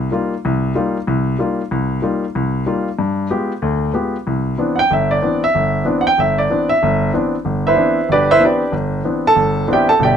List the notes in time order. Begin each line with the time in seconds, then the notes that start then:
0.11 G3 A#3 D#4 F4
0.45 C2
0.75 G3 A#3 D#4 F4
1.07 C2
1.39 G3 A#3 D#4 F4
1.71 C2
2.02 G3 A#3 D#4 F4
2.35 C2
2.66 G3 A#3 D#4 F4
2.99 G2
3.30 G#3 B3 F4 G4
3.62 D2
3.94 G#3 B3 F4 G4
4.27 C2
4.58 E3 B3 C4 D4
4.76 F#5 G5
4.91 G1 E5
5.11 D5
5.22 E3 B3 C4 D4
5.44 E5
5.55 G1
5.85 E3 B3 C4 D4
6.01 F#5
6.07 G5
6.18 G1 E5
6.38 D5
6.50 E3 B3 C4 D4
6.69 E5
6.83 G1
7.14 E3 B3 C4 D4
7.45 G1
7.67 E4 B4 C5 E5
7.76 E3 B3 C4 D4
8.09 G1 D4 G4 B4 D5
8.31 E4 B4 C5 E5
8.40 E3 B3 C4 D4
8.45 D4 G4 B4 D5
8.72 G1
9.04 E3 B3 C4 D4
9.27 A4 A5
9.36 G1
9.68 E3 B3 C4 D4
9.73 G4 D5 E5 G5
9.89 A4 A5
9.99 G1 B2 G5
10.04 G4 D5 E5